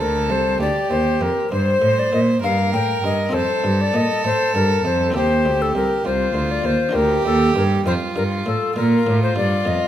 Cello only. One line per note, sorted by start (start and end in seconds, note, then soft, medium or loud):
0.00 0.31 D2 medium
0.29 0.59 C2 medium
0.60 0.68 D2 medium
0.90 1.20 D#2 medium
1.20 1.28 F2 medium
1.51 1.81 G2 medium
1.82 2.12 A2 medium
2.13 2.42 A#2 medium
2.43 2.75 G2 medium
2.73 3.03 A2 medium
3.03 3.33 G2 medium
3.33 3.41 F2 medium
3.64 3.94 G2 medium
3.94 4.02 A#2 medium
4.25 4.33 A2 medium
4.55 4.84 G2 medium
4.84 5.16 F2 medium
5.15 5.47 D#2 medium
5.45 5.75 D2 medium
5.75 5.83 C2 medium
6.05 6.34 C2 medium
6.35 6.64 D2 medium
6.65 6.73 D#2 medium
6.95 7.25 D2 medium
7.25 7.55 D#2 medium
7.55 7.85 G2 medium
7.86 7.94 F2 medium
8.16 8.46 G2 medium
8.47 8.55 A2 medium
8.77 9.07 A#2 medium
9.07 9.36 A2 medium
9.37 9.66 G2 medium
9.67 9.75 F2 medium